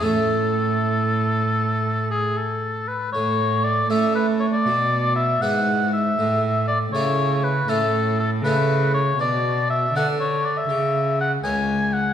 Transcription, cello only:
\new Staff \with { instrumentName = "Cello" } { \clef bass \time 12/8 \key a \major \tempo 4. = 79 a,1~ a,4. r8 | a,4. a4. b,4. gis,4. | a,4. cis4. a,4. cis4. | b,4. d4. cis4. cis,4. | }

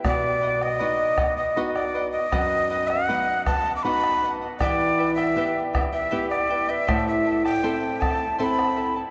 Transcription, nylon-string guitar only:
\new Staff \with { instrumentName = "Nylon-string guitar" } { \time 3/4 \key b \phrygian \tempo 4 = 79 b,4 <b dis' fis'>4 <b dis' fis'>4 | fis,4 <b dis' fis'>4 <b dis' fis'>4 | e4 <b e' g'>4 <b e' g'>4 | a,4 <c' e' a'>4 <c' e' a'>4 | }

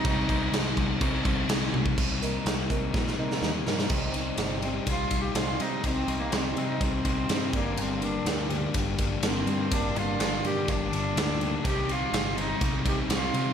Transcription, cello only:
\new Staff \with { instrumentName = "Cello" } { \time 4/4 \key c \minor \tempo 4 = 124 ees'2. r4 | r1 | r4. c'8 \tuplet 3/2 { f'4 g'8 } f'8 ees'8 | \tuplet 3/2 { c'4 bes8 c'4 ees'8 } c'4. bes8 |
c'8 d'8 g4. r8 c'4 | d'8 f'4 g'8 d'2 | g'8 f'4 ees'4 g'8 f'4 | }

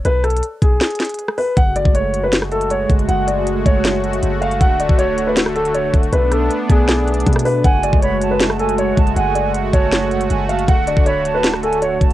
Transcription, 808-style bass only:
\new Staff \with { instrumentName = "808-style bass" } { \clef bass \time 4/4 \key fis \minor \tempo 4 = 158 b,,4 r8 b,,8 r2 | fis,,8. fis,,2~ fis,,8. fis,,8 | fis,,4. fis,,4. fis,,4 | d,,8. d,,2~ d,,8. d,,8 |
b,,4 r8 b,,4. b,4 | fis,,8. fis,,2~ fis,,8. fis,,8 | fis,,4. fis,,4. fis,,4 | d,,8. d,,2~ d,,8. d,,8 | }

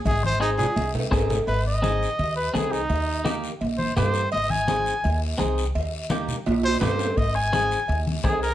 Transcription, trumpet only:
\new Staff \with { instrumentName = "Trumpet" } { \time 4/4 \key aes \major \tempo 4 = 169 aes'8 c''8 ees'8 aes'4 r4. | ces''8 ees''2 ces''8 aes'8 ees'8~ | ees'4. r4 c''8 c''4 | ees''8 aes''2 r4. |
r2 r8 c''8 c''4 | ees''8 aes''2 r8 aes'8 bes'8 | }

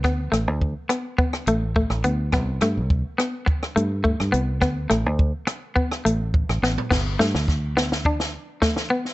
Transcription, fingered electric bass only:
\new Staff \with { instrumentName = "Fingered electric bass" } { \clef bass \time 4/4 \key g \major \tempo 4 = 105 d,8 a,,16 d,8 r4 r16 a,,8. a,,16 d,8 | c,8 g,16 c,8 r4 r16 g,8. g,16 c,8 | d,8 a,,16 d,8 r4 r16 a,,8. a,,16 a,,16 r16 | g,,8 g,16 d,2 r4 r16 | }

